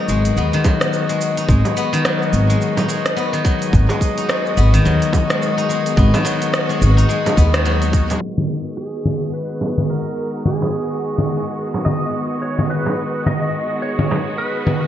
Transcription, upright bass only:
0.08 0.29 G#1 medium
0.37 0.48 D#2 medium
1.49 1.60 G#1 medium
2.33 2.53 G#1 medium
3.73 3.84 G#1 loud
4.57 4.78 G#1 medium
4.86 4.96 D#2 medium
5.97 6.08 G#1 loud
6.82 7.02 G#1 medium
7.37 8.16 D#2 medium

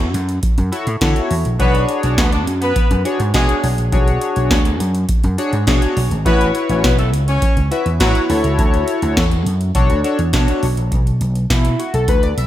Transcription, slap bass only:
0.14 0.38 F#2 medium
0.58 0.70 F#2 medium
0.87 0.99 A2 loud
1.01 1.13 D3 loud
1.31 1.43 E2 medium
1.45 1.57 A#1 medium
1.60 1.83 B1 loud
2.03 2.15 B1 medium
2.18 2.42 D2 medium
2.47 2.71 F#2 medium
2.91 3.03 F#2 medium
3.20 3.32 G#2 loud
3.34 3.46 B2 loud
3.63 3.75 B1 medium
3.78 3.90 A#1 loud
3.93 4.16 B1 loud
4.36 4.48 B1 medium
4.51 4.75 D2 loud
4.80 5.04 F#2 medium
5.24 5.36 F#2 medium
5.53 5.65 G#2 loud
5.67 5.79 B2 loud
5.97 6.09 B1 loud
6.11 6.23 G#1 medium
6.26 6.50 A1 loud
6.69 6.81 A1 loud
6.84 7.13 B1 loud
7.13 7.37 C#2 medium
7.57 7.69 C#2 medium
7.86 7.98 E2 loud
8.00 8.12 A2 loud
8.30 8.42 D2 loud
8.44 8.56 C#2 medium
8.59 8.83 D2 loud
9.02 9.14 D2 loud
9.17 9.41 E2 loud
9.46 9.70 F#2 loud
9.75 9.87 B1 loud
9.90 10.02 D2 medium
10.19 10.31 E2 loud
10.33 10.45 B2 loud
10.63 10.75 B1 loud
10.77 10.89 A#1 medium
10.92 11.16 B1 loud
11.21 11.45 B1 medium
11.50 11.74 B2 medium
11.94 12.06 B1 medium
12.08 12.32 D2 medium
12.37 12.47 B1 medium

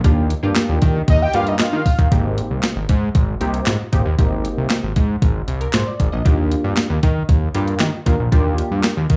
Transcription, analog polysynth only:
0.04 0.27 A#3 medium
0.04 0.27 D4 medium
0.04 0.28 F4 medium
0.04 0.28 G4 loud
0.43 0.97 A#3 medium
0.43 0.97 D4 medium
0.43 0.97 F4 medium
0.43 0.97 G4 loud
1.34 1.80 A#3 medium
1.34 1.80 D4 medium
1.34 1.80 F4 medium
1.34 1.80 G4 medium
2.12 2.73 A#3 medium
2.12 2.73 C4 medium
2.12 2.73 D#4 medium
2.12 2.73 G4 medium
3.40 3.71 A#3 medium
3.40 3.71 C4 medium
3.40 3.72 D#4 medium
3.40 3.72 G4 loud
3.92 4.06 A#3 medium
3.92 4.06 C4 medium
3.92 4.07 D#4 medium
3.92 4.07 G4 medium
4.18 4.80 A#3 medium
4.18 4.80 C4 medium
4.18 4.80 D#4 medium
4.18 4.80 G4 medium
5.61 5.73 A#4 medium
5.74 5.86 C5 medium
5.87 6.11 D5 medium
6.12 6.37 D#5 medium
6.25 6.86 A#3 medium
6.25 6.87 D4 medium
6.25 6.87 F4 medium
6.25 6.87 G4 medium
7.54 7.85 A#3 medium
7.54 7.85 D4 medium
7.54 7.85 F4 medium
7.54 7.86 G4 loud
8.06 8.20 A#3 medium
8.06 8.20 D4 medium
8.06 8.20 F4 medium
8.06 8.21 A#4 loud
8.32 8.93 A#3 medium
8.32 8.93 D4 medium
8.32 8.93 F4 medium
8.32 8.94 G4 loud

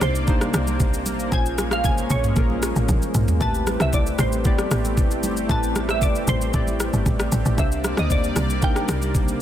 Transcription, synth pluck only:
0.03 1.02 C5 medium
1.33 1.70 G#5 loud
1.73 1.85 F5 medium
1.85 2.12 G#5 loud
2.11 3.11 C#5 medium
3.42 3.82 A5 loud
3.82 3.87 E5 medium
3.94 4.20 D5 loud
4.20 5.20 C5 medium
5.51 5.91 A5 loud
5.90 6.01 E5 medium
6.03 6.29 D5 medium
6.29 7.29 C5 medium
7.59 7.96 E5 medium
7.99 8.11 D#5 medium
8.12 8.65 D5 medium
8.64 9.37 G5 loud

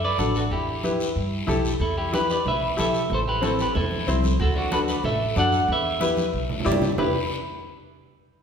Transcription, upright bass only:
0.00 0.12 F#2 medium
0.18 0.44 A1 medium
0.51 1.03 E2 medium
1.16 1.42 G2 medium
1.48 1.74 B1 medium
1.80 2.32 E2 medium
2.45 2.71 B1 medium
2.78 3.04 B1 medium
3.10 3.62 A1 loud
3.76 4.01 E2 medium
4.07 4.33 C2 loud
4.39 4.91 D2 loud
5.04 5.30 A1 medium
5.36 5.62 F#2 medium
5.68 6.20 E2 loud
6.33 6.59 B1 medium
6.66 6.92 G2 medium
6.99 7.13 E2 medium

